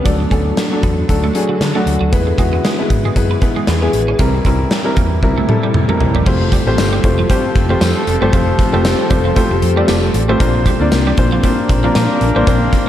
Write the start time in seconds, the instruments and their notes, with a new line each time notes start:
0.04 fingered electric bass D2, ambient pad D3 D4 F#4 A4, grand piano F#3 A3 D4 A4, clean electric guitar D4, kick, closed hi-hat
0.20 muted clean electric guitar stroke
0.31 fingered electric bass D2, grand piano F#3 A3 D4 A4, clean electric guitar C#4, kick, closed hi-hat
0.57 snare, closed hi-hat
0.71 grand piano F#3 A3 D4 A4
0.83 fingered electric bass E2, clean electric guitar B3, kick, closed hi-hat
1.08 fingered electric bass D2, grand piano F#3 A3 D4 A4, kick, closed hi-hat
1.24 clean electric guitar A3
1.34 grand piano F#3 A3 D4 G#4, muted clean electric guitar stroke, closed hi-hat
1.49 clean electric guitar F#3
1.61 fingered electric bass D3, snare, closed hi-hat
1.74 grand piano F#3 A3 D4 F#4, clean electric guitar A3
1.86 fingered electric bass D2, muted clean electric guitar stroke, closed hi-hat
2.01 fingered electric bass D2, clean electric guitar F#3
2.12 ambient pad E3 E4 G#4 B4, grand piano G#3 B3 E4 B4, kick, closed hi-hat
2.27 muted clean electric guitar stroke
2.38 fingered electric bass E2, grand piano G#3 B3 E4 F#4, clean electric guitar G#3, kick, closed hi-hat
2.53 clean electric guitar B3
2.65 clean electric guitar G#3, snare, closed hi-hat
2.79 grand piano G#3 B3 E4 B4
2.90 fingered electric bass G#2, muted clean electric guitar stroke, kick, closed hi-hat
3.05 clean electric guitar G#3
3.15 fingered electric bass F#2, grand piano G#3 B3 E4 B4, kick, closed hi-hat
3.31 clean electric guitar B3
3.41 grand piano G#3 B3 E4 B4, muted clean electric guitar stroke, kick, closed hi-hat
3.56 clean electric guitar G#3
3.67 fingered electric bass E2, clean electric guitar B3, snare, closed hi-hat
3.81 grand piano G#3 B3 E4 G#4, muted clean electric guitar stroke
3.93 fingered electric bass A1, closed hi-hat
4.08 clean electric guitar C#4
4.19 fingered electric bass C2, ambient pad C3 G3 A#3 E4, grand piano G3 C4 E4 A#4, clean electric guitar C4, kick, closed hi-hat
4.35 muted clean electric guitar stroke
4.45 fingered electric bass C2, grand piano G3 C4 E4 A#4, clean electric guitar C4, kick, closed hi-hat
4.71 snare, closed hi-hat
4.84 grand piano G3 C4 E4 A#4
4.96 fingered electric bass E2, clean electric guitar A#3, kick, closed hi-hat
5.23 fingered electric bass C2, grand piano G3 C4 E4 A#4, kick, high tom
5.38 clean electric guitar A3
5.48 grand piano G3 C4 E4 A4, muted clean electric guitar stroke, mid tom
5.63 clean electric guitar G3
5.74 fingered electric bass C3, mid tom
5.88 grand piano G3 C4 E4 A#4, clean electric guitar A3, mid tom
6.00 fingered electric bass C2, muted clean electric guitar stroke, floor tom
6.15 fingered electric bass G1, clean electric guitar G3, floor tom
6.26 fingered electric bass F1, clean electric guitar F3, ambient pad F3 C4 G4 A4, grand piano A3 C4 F4 G4 C5, kick, crash
6.41 muted clean electric guitar stroke
6.52 clean electric guitar G3, kick, closed hi-hat
6.66 fingered electric bass A1, grand piano A3 C4 F4 G4 C5
6.78 fingered electric bass G1, snare, closed hi-hat, tambourine
6.93 clean electric guitar G3
7.04 fingered electric bass F1, grand piano A3 C4 F4 G4 C5, muted clean electric guitar stroke, kick, closed hi-hat
7.19 clean electric guitar F3
7.30 horn section F3 A3 C4 A4, clean electric guitar G3, grand piano A3 C4 F4 G4 C5, kick, closed hi-hat
7.55 fingered electric bass F1, muted clean electric guitar stroke, kick, closed hi-hat
7.69 clean electric guitar F3, grand piano A3 C4 F4 G4 C5
7.81 fingered electric bass F2, clean electric guitar F3, snare, closed hi-hat, tambourine
8.07 fingered electric bass F1, muted clean electric guitar stroke, closed hi-hat
8.21 fingered electric bass G1, clean electric guitar G3, grand piano A3 C4 F4 G4 C5
8.33 fingered electric bass F1, clean electric guitar F3, grand piano A3 C4 F4 G4 C5, kick, closed hi-hat
8.59 muted clean electric guitar stroke, kick, closed hi-hat
8.72 fingered electric bass F1, grand piano A3 C4 F4 G4 C5, clean electric guitar A3
8.85 muted clean electric guitar stroke, snare, closed hi-hat, tambourine
9.10 fingered electric bass F1, clean electric guitar G3, grand piano A3 C4 F4 G4 C5, kick, closed hi-hat
9.25 clean electric guitar F3
9.35 grand piano A3 C4 F4 G4 C5, clean electric guitar A3, kick, closed hi-hat
9.51 fingered electric bass F1, muted clean electric guitar stroke
9.62 fingered electric bass F2, closed hi-hat
9.76 clean electric guitar G3, grand piano A3 C4 F4 G4 D5
9.88 fingered electric bass F1, clean electric guitar G3, snare, closed hi-hat, tambourine
10.14 fingered electric bass A1, muted clean electric guitar stroke, closed hi-hat
10.28 grand piano A3 C4 F4 G4 C5, clean electric guitar A3
10.40 fingered electric bass A#1, grand piano A#3 C4 D4 F4 C5, ambient pad A#3 D4, clean electric guitar A#3, kick, closed hi-hat
10.55 muted clean electric guitar stroke
10.66 clean electric guitar G3, kick, closed hi-hat
10.80 fingered electric bass D2, grand piano A#3 C4 D4 F4 D5
10.92 fingered electric bass C2, snare, closed hi-hat, tambourine
11.07 clean electric guitar G3
11.17 fingered electric bass A#1, grand piano A#3 C4 D4 F4 C5, muted clean electric guitar stroke, kick, closed hi-hat
11.32 clean electric guitar F3
11.43 horn section F3 A#3 D4 A#4, clean electric guitar G3, grand piano A#3 C4 D4 F4 C5, kick, closed hi-hat
11.69 fingered electric bass A#1, muted clean electric guitar stroke, kick, closed hi-hat
11.84 clean electric guitar F3, grand piano A#3 C4 D4 F4 A#4
11.95 fingered electric bass A#2, clean electric guitar F3, snare, closed hi-hat, tambourine
12.21 fingered electric bass A#1, muted clean electric guitar stroke, closed hi-hat
12.35 fingered electric bass A1, clean electric guitar G3, grand piano A#3 C4 D4 F4 C5
12.47 fingered electric bass A#1, grand piano A#3 C4 D4 F4 C5, clean electric guitar A#3, kick, closed hi-hat
12.73 muted clean electric guitar stroke, kick, closed hi-hat